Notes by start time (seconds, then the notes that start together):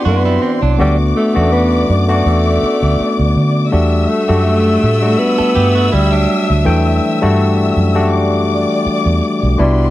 Already playing: B3 C4 D4 E4 F#4 D5 C6
0.05 F#2 A3 B3 F#4
0.25 G3 E4
0.42 E3 C4
0.62 C2 F#3 D4
0.79 D2 G3 A3 B3 D4 F#4 D5 D6
1.16 A3
1.35 E2 A3 B3 C#4 F#4
1.42 D4
1.53 B3
1.90 F#2
2.08 A3 B3 D4 F#4
2.26 E2 A3
2.63 muted fingered electric bass stroke
2.83 D2
3.00 muted fingered electric bass stroke
3.19 D2
3.36 D3
3.72 E2 G3 A3 D4 F#4 E5 E6
4.08 A3
4.28 F#2 A3 D4 F#4 G4
4.83 A2
5.02 G3 A3 D4 F#4
5.19 B3
5.39 A4, muted fingered electric bass stroke
5.55 G2 B3 G4
5.75 A3 F#4
5.92 D2 G3 E4
6.12 F#3 D4
6.50 D2
6.65 E2 E3 A3 D4 G5
7.22 G2 G3 A3 D4 F#4
7.77 F#2
7.95 A3 D4 F#4 G4
8.13 D5 D6
8.86 muted fingered electric bass stroke
9.06 E2
9.43 B1
9.58 C2 G3 B3 D4 E4 F#4 D5 C6